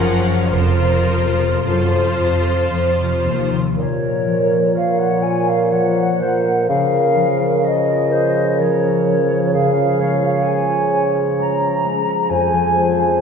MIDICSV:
0, 0, Header, 1, 11, 480
1, 0, Start_track
1, 0, Key_signature, -5, "minor"
1, 0, Tempo, 1125704
1, 225, Time_signature, 3, 2, 24, 8
1, 707, Tempo, 1058201
1, 1667, Tempo, 970874
1, 3107, Tempo, 949367
1, 4547, Tempo, 920245
1, 6464, End_track
2, 0, Start_track
2, 0, Title_t, "Flute section"
2, 0, Program_c, 0, 73
2, 1670, Note_on_c, 0, 73, 57
2, 2131, Note_off_c, 0, 73, 0
2, 2149, Note_on_c, 0, 77, 51
2, 2265, Note_on_c, 0, 78, 56
2, 2267, Note_off_c, 0, 77, 0
2, 2384, Note_on_c, 0, 80, 57
2, 2387, Note_off_c, 0, 78, 0
2, 2507, Note_off_c, 0, 80, 0
2, 2511, Note_on_c, 0, 77, 54
2, 2629, Note_on_c, 0, 78, 58
2, 2631, Note_off_c, 0, 77, 0
2, 3106, Note_on_c, 0, 77, 67
2, 3108, Note_off_c, 0, 78, 0
2, 3576, Note_off_c, 0, 77, 0
2, 3591, Note_on_c, 0, 75, 58
2, 4074, Note_off_c, 0, 75, 0
2, 4075, Note_on_c, 0, 73, 64
2, 4549, Note_on_c, 0, 77, 68
2, 4552, Note_off_c, 0, 73, 0
2, 5017, Note_off_c, 0, 77, 0
2, 5029, Note_on_c, 0, 80, 61
2, 5390, Note_off_c, 0, 80, 0
2, 5517, Note_on_c, 0, 82, 64
2, 5982, Note_off_c, 0, 82, 0
2, 5990, Note_on_c, 0, 80, 75
2, 6464, Note_off_c, 0, 80, 0
2, 6464, End_track
3, 0, Start_track
3, 0, Title_t, "Clarinet"
3, 0, Program_c, 1, 71
3, 1665, Note_on_c, 1, 70, 43
3, 2128, Note_off_c, 1, 70, 0
3, 2146, Note_on_c, 1, 73, 42
3, 2619, Note_off_c, 1, 73, 0
3, 2625, Note_on_c, 1, 73, 43
3, 2862, Note_off_c, 1, 73, 0
3, 2872, Note_on_c, 1, 72, 44
3, 3109, Note_on_c, 1, 70, 45
3, 3116, Note_off_c, 1, 72, 0
3, 3585, Note_off_c, 1, 70, 0
3, 3588, Note_on_c, 1, 70, 45
3, 3830, Note_on_c, 1, 72, 43
3, 3838, Note_off_c, 1, 70, 0
3, 4069, Note_on_c, 1, 70, 41
3, 4076, Note_off_c, 1, 72, 0
3, 4547, Note_off_c, 1, 70, 0
3, 4550, Note_on_c, 1, 68, 46
3, 4791, Note_on_c, 1, 73, 46
3, 4799, Note_off_c, 1, 68, 0
3, 5851, Note_off_c, 1, 73, 0
3, 5986, Note_on_c, 1, 72, 48
3, 6464, Note_off_c, 1, 72, 0
3, 6464, End_track
4, 0, Start_track
4, 0, Title_t, "Violin section"
4, 0, Program_c, 2, 48
4, 0, Note_on_c, 2, 78, 56
4, 216, Note_off_c, 2, 78, 0
4, 229, Note_on_c, 2, 70, 55
4, 709, Note_on_c, 2, 69, 40
4, 710, Note_off_c, 2, 70, 0
4, 1197, Note_off_c, 2, 69, 0
4, 6464, End_track
5, 0, Start_track
5, 0, Title_t, "Violin section"
5, 0, Program_c, 3, 48
5, 0, Note_on_c, 3, 65, 35
5, 0, Note_on_c, 3, 70, 38
5, 224, Note_off_c, 3, 65, 0
5, 229, Note_off_c, 3, 70, 0
5, 229, Note_on_c, 3, 72, 38
5, 230, Note_on_c, 3, 65, 36
5, 700, Note_off_c, 3, 65, 0
5, 700, Note_off_c, 3, 72, 0
5, 712, Note_on_c, 3, 65, 40
5, 713, Note_on_c, 3, 72, 40
5, 1560, Note_off_c, 3, 65, 0
5, 1560, Note_off_c, 3, 72, 0
5, 6464, End_track
6, 0, Start_track
6, 0, Title_t, "French horn section"
6, 0, Program_c, 4, 60
6, 0, Note_on_c, 4, 53, 42
6, 0, Note_on_c, 4, 70, 42
6, 157, Note_off_c, 4, 53, 0
6, 157, Note_off_c, 4, 70, 0
6, 230, Note_on_c, 4, 53, 39
6, 230, Note_on_c, 4, 72, 37
6, 700, Note_off_c, 4, 53, 0
6, 701, Note_off_c, 4, 72, 0
6, 708, Note_on_c, 4, 53, 35
6, 709, Note_on_c, 4, 72, 35
6, 1501, Note_off_c, 4, 53, 0
6, 1502, Note_off_c, 4, 72, 0
6, 1675, Note_on_c, 4, 70, 44
6, 1676, Note_on_c, 4, 53, 44
6, 4533, Note_off_c, 4, 53, 0
6, 4555, Note_on_c, 4, 53, 46
6, 5009, Note_off_c, 4, 70, 0
6, 5028, Note_on_c, 4, 68, 48
6, 6464, Note_off_c, 4, 53, 0
6, 6464, Note_off_c, 4, 68, 0
6, 6464, End_track
7, 0, Start_track
7, 0, Title_t, "Harp"
7, 0, Program_c, 5, 46
7, 0, Note_on_c, 5, 42, 36
7, 0, Note_on_c, 5, 49, 27
7, 0, Note_on_c, 5, 53, 27
7, 111, Note_on_c, 5, 61, 27
7, 230, Note_on_c, 5, 41, 36
7, 246, Note_off_c, 5, 42, 0
7, 246, Note_off_c, 5, 49, 0
7, 247, Note_off_c, 5, 61, 0
7, 348, Note_on_c, 5, 48, 27
7, 462, Note_off_c, 5, 53, 0
7, 467, Note_on_c, 5, 53, 28
7, 592, Note_on_c, 5, 65, 29
7, 708, Note_on_c, 5, 72, 30
7, 829, Note_off_c, 5, 65, 0
7, 834, Note_on_c, 5, 65, 26
7, 953, Note_off_c, 5, 72, 0
7, 958, Note_on_c, 5, 72, 28
7, 1073, Note_off_c, 5, 65, 0
7, 1079, Note_on_c, 5, 65, 28
7, 1192, Note_off_c, 5, 53, 0
7, 1197, Note_on_c, 5, 53, 29
7, 1311, Note_off_c, 5, 48, 0
7, 1316, Note_on_c, 5, 48, 27
7, 1430, Note_off_c, 5, 53, 0
7, 1436, Note_on_c, 5, 53, 27
7, 1548, Note_off_c, 5, 48, 0
7, 1553, Note_on_c, 5, 48, 24
7, 1669, Note_on_c, 5, 46, 43
7, 1687, Note_off_c, 5, 48, 0
7, 1689, Note_off_c, 5, 72, 0
7, 1691, Note_off_c, 5, 41, 0
7, 1791, Note_on_c, 5, 58, 31
7, 1904, Note_off_c, 5, 53, 0
7, 1910, Note_on_c, 5, 53, 30
7, 2025, Note_off_c, 5, 65, 0
7, 2031, Note_on_c, 5, 65, 33
7, 2150, Note_on_c, 5, 70, 35
7, 2263, Note_off_c, 5, 65, 0
7, 2269, Note_on_c, 5, 65, 35
7, 2382, Note_off_c, 5, 70, 0
7, 2388, Note_on_c, 5, 70, 35
7, 2506, Note_off_c, 5, 65, 0
7, 2511, Note_on_c, 5, 65, 33
7, 2624, Note_off_c, 5, 53, 0
7, 2630, Note_on_c, 5, 53, 34
7, 2742, Note_off_c, 5, 58, 0
7, 2747, Note_on_c, 5, 58, 33
7, 2864, Note_off_c, 5, 53, 0
7, 2869, Note_on_c, 5, 53, 31
7, 2986, Note_off_c, 5, 58, 0
7, 2992, Note_on_c, 5, 58, 31
7, 3110, Note_on_c, 5, 49, 43
7, 3128, Note_off_c, 5, 46, 0
7, 3226, Note_on_c, 5, 61, 32
7, 3339, Note_off_c, 5, 53, 0
7, 3345, Note_on_c, 5, 53, 33
7, 3462, Note_off_c, 5, 65, 0
7, 3468, Note_on_c, 5, 65, 34
7, 3582, Note_off_c, 5, 70, 0
7, 3588, Note_on_c, 5, 70, 36
7, 3704, Note_off_c, 5, 65, 0
7, 3710, Note_on_c, 5, 65, 34
7, 3821, Note_off_c, 5, 70, 0
7, 3827, Note_on_c, 5, 70, 35
7, 3945, Note_off_c, 5, 65, 0
7, 3951, Note_on_c, 5, 65, 35
7, 4068, Note_off_c, 5, 53, 0
7, 4074, Note_on_c, 5, 53, 35
7, 4188, Note_off_c, 5, 61, 0
7, 4194, Note_on_c, 5, 61, 33
7, 4307, Note_off_c, 5, 53, 0
7, 4313, Note_on_c, 5, 53, 32
7, 4429, Note_off_c, 5, 61, 0
7, 4435, Note_on_c, 5, 61, 33
7, 4542, Note_off_c, 5, 49, 0
7, 4549, Note_on_c, 5, 49, 45
7, 4568, Note_off_c, 5, 70, 0
7, 4570, Note_off_c, 5, 58, 0
7, 4660, Note_off_c, 5, 61, 0
7, 4667, Note_on_c, 5, 61, 33
7, 4787, Note_on_c, 5, 56, 34
7, 4902, Note_off_c, 5, 65, 0
7, 4908, Note_on_c, 5, 65, 36
7, 5030, Note_on_c, 5, 73, 35
7, 5143, Note_off_c, 5, 65, 0
7, 5150, Note_on_c, 5, 65, 38
7, 5265, Note_off_c, 5, 73, 0
7, 5271, Note_on_c, 5, 73, 37
7, 5384, Note_off_c, 5, 65, 0
7, 5390, Note_on_c, 5, 65, 35
7, 5503, Note_off_c, 5, 56, 0
7, 5510, Note_on_c, 5, 56, 37
7, 5623, Note_off_c, 5, 61, 0
7, 5629, Note_on_c, 5, 61, 35
7, 5743, Note_off_c, 5, 56, 0
7, 5749, Note_on_c, 5, 56, 37
7, 5862, Note_off_c, 5, 61, 0
7, 5868, Note_on_c, 5, 61, 36
7, 5987, Note_on_c, 5, 41, 49
7, 6006, Note_off_c, 5, 49, 0
7, 6102, Note_off_c, 5, 53, 0
7, 6109, Note_on_c, 5, 53, 38
7, 6223, Note_off_c, 5, 56, 0
7, 6229, Note_on_c, 5, 56, 37
7, 6345, Note_off_c, 5, 65, 0
7, 6351, Note_on_c, 5, 65, 39
7, 6462, Note_off_c, 5, 73, 0
7, 6464, Note_off_c, 5, 41, 0
7, 6464, Note_off_c, 5, 53, 0
7, 6464, Note_off_c, 5, 56, 0
7, 6464, Note_off_c, 5, 61, 0
7, 6464, Note_off_c, 5, 65, 0
7, 6464, End_track
8, 0, Start_track
8, 0, Title_t, "Viola section"
8, 0, Program_c, 6, 48
8, 0, Note_on_c, 6, 53, 41
8, 0, Note_on_c, 6, 61, 41
8, 218, Note_off_c, 6, 53, 0
8, 227, Note_off_c, 6, 61, 0
8, 227, Note_on_c, 6, 53, 35
8, 228, Note_on_c, 6, 65, 37
8, 699, Note_off_c, 6, 53, 0
8, 707, Note_off_c, 6, 65, 0
8, 710, Note_on_c, 6, 53, 35
8, 712, Note_on_c, 6, 65, 39
8, 1559, Note_off_c, 6, 53, 0
8, 1560, Note_off_c, 6, 65, 0
8, 6464, End_track
9, 0, Start_track
9, 0, Title_t, "Bassoon"
9, 0, Program_c, 7, 70
9, 1669, Note_on_c, 7, 46, 45
9, 3089, Note_off_c, 7, 46, 0
9, 3110, Note_on_c, 7, 49, 48
9, 5829, Note_off_c, 7, 49, 0
9, 5992, Note_on_c, 7, 53, 52
9, 6464, Note_off_c, 7, 53, 0
9, 6464, End_track
10, 0, Start_track
10, 0, Title_t, "Cello section"
10, 0, Program_c, 8, 48
10, 0, Note_on_c, 8, 42, 38
10, 215, Note_off_c, 8, 42, 0
10, 227, Note_on_c, 8, 41, 36
10, 661, Note_off_c, 8, 41, 0
10, 708, Note_on_c, 8, 42, 44
10, 939, Note_off_c, 8, 42, 0
10, 956, Note_on_c, 8, 41, 35
10, 1189, Note_off_c, 8, 41, 0
10, 1195, Note_on_c, 8, 41, 39
10, 1431, Note_off_c, 8, 41, 0
10, 1437, Note_on_c, 8, 39, 34
10, 1669, Note_off_c, 8, 39, 0
10, 6464, End_track
11, 0, Start_track
11, 0, Title_t, "Double bass section"
11, 0, Program_c, 10, 48
11, 0, Note_on_c, 10, 30, 38
11, 210, Note_off_c, 10, 30, 0
11, 229, Note_on_c, 10, 29, 34
11, 693, Note_off_c, 10, 29, 0
11, 6464, End_track
0, 0, End_of_file